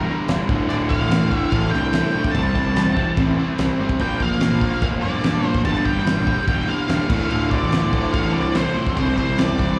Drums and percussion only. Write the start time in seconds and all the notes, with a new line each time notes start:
0.28 snare, crash
0.49 kick
0.70 crash
0.91 kick
1.11 snare, crash
1.32 kick
1.52 kick, crash
1.73 snare
1.93 snare, crash
2.24 kick
2.35 kick, crash
2.55 kick
2.76 snare, crash
2.97 kick
3.17 kick, crash
3.58 snare, crash
3.89 kick
3.99 kick, crash
4.20 kick
4.40 snare, crash
4.61 kick
4.82 kick, crash
5.24 snare, crash
5.54 kick
5.65 kick, crash
5.86 kick
6.07 snare, crash
6.27 kick
6.48 kick, crash
6.89 snare, crash
7.10 kick, crash
7.31 crash
7.51 kick
7.72 snare, crash
7.93 kick
8.14 kick, crash
8.55 snare, crash
8.87 kick
8.97 kick, crash
9.18 kick
9.38 snare, crash
9.59 kick, snare